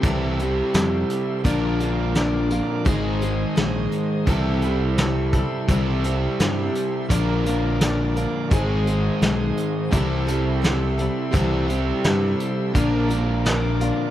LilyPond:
<<
  \new Staff \with { instrumentName = "Tonewheel organ" } { \time 4/4 \key c \mixolydian \tempo 4 = 85 << { <a' g'' c'''>2 <bes' f'' d'''>2 | <c'' aes'' ees'''>2 <a' g'' c'''>2~ | <a' g'' c'''>2 <bes' f'' d'''>2 | <c'' aes'' ees'''>2 <a' g'' c'''>2~ |
<a' g'' c'''>2 <bes' f'' d'''>2 | } \\ { e''2 d''2 | ees''2 e''2 | e''2 d''2 | ees''2 e''2~ |
e''2 d''2 | } >> }
  \new Staff \with { instrumentName = "Steel-string acoustic guitar" } { \time 4/4 \key c \mixolydian <c e g c' e' a'>8 <g c' e' a'>8 <g c' e' a'>4 <bes, f bes d' f' bes'>8 <bes d' f' bes'>8 <bes d' f' bes'>8 <bes d' f' bes'>8 | <aes ees' aes' c''>8 <ees' aes' c''>8 <aes ees' aes' c''>4 <c e g c' e' a'>8 <g c' e' a'>8 <g c' e' a'>8 <g c' e' a'>8 | <c e g c' e' a'>8 <g c' e' a'>8 <g c' e' a'>4 <bes, f bes d' f' bes'>8 <bes d' f' bes'>8 <bes d' f' bes'>8 <bes d' f' bes'>8 | <aes ees' aes' c''>8 <ees' aes' c''>8 <aes ees' aes' c''>4 <c e g c' e' a'>8 <g c' e' a'>8 <g c' e' a'>8 <g c' e' a'>8 |
<c e g c' e' a'>8 <g c' e' a'>8 <g c' e' a'>4 <bes, f bes d' f' bes'>8 <bes d' f' bes'>8 <bes d' f' bes'>8 <bes d' f' bes'>8 | }
  \new Staff \with { instrumentName = "Overdriven electric guitar" } { \time 4/4 \key c \mixolydian <c g c' e' g'>2 <bes, d f bes d' bes'>2 | <aes, ees aes c' ees' aes'>2 <c g c' e' g'>2 | <c g c' e' g'>2 <bes, d f bes d' bes'>2 | <aes, ees aes c' ees' aes'>2 <c g c' e' g'>2 |
<c g c' e' g'>2 <bes, d f bes d' bes'>2 | }
  \new Staff \with { instrumentName = "Fingered electric bass" } { \clef bass \time 4/4 \key c \mixolydian c,4 f,8 r8 bes,,2 | aes,,4 bes,,8 r8 c,2 | c,4 g,8 r8 bes,,2 | aes,,4 b,,8 r8 c,2 |
c,4 g,8 r8 bes,,2 | }
  \new DrumStaff \with { instrumentName = "Drums" } \drummode { \time 4/4 <hh bd>8 hh8 <hh sn>8 hh8 <hh bd>8 hh8 <hh sn>8 hh8 | <hh bd>8 hh8 <hh sn>8 hh8 <hh bd>8 hh8 <hh sn>8 <hh bd>8 | <hh bd>8 hh8 <hh sn>8 hh8 <hh bd>8 hh8 <hh sn>8 hh8 | <hh bd>8 hh8 <hh sn>8 hh8 <hh bd>8 hh8 <hh sn>8 hh8 |
<hh bd>8 hh8 <hh sn>8 hh8 <hh bd>8 hh8 <hh sn>8 hh8 | }
>>